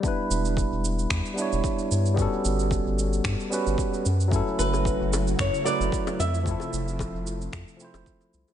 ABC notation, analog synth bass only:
X:1
M:4/4
L:1/16
Q:"Swing 16ths" 1/4=112
K:Edor
V:1 name="Analog synth bass" clef=bass
z2 E,,,3 E,,,3 E,, z2 E,,, z2 G,,2- | G,, z G,,,3 G,,,3 G,, z2 G,,, z2 F,,2- | F,, z F,,,3 F,,,3 F,, z2 F,,, z2 =F,,2- | =F,, z =F,,,3 F,,,3 F,, z2 F,,, z2 =C,, z |]